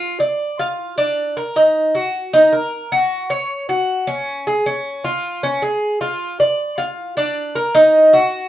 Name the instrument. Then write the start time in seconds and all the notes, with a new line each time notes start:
cuban tres
Already playing: F4
0.20 D5
0.59 F4
0.98 D4
1.37 A#4
1.56 D#4
1.95 F#4
2.33 D#4
2.53 A#4
2.92 F#4
3.30 C#5
3.69 F#4
4.07 C#4
4.47 G#4
4.66 C#4
5.04 F4
5.43 C#4
5.62 G#4
6.01 F4
6.40 D5
6.78 F4
7.17 D4
7.55 A#4
7.75 D#4
8.13 F#4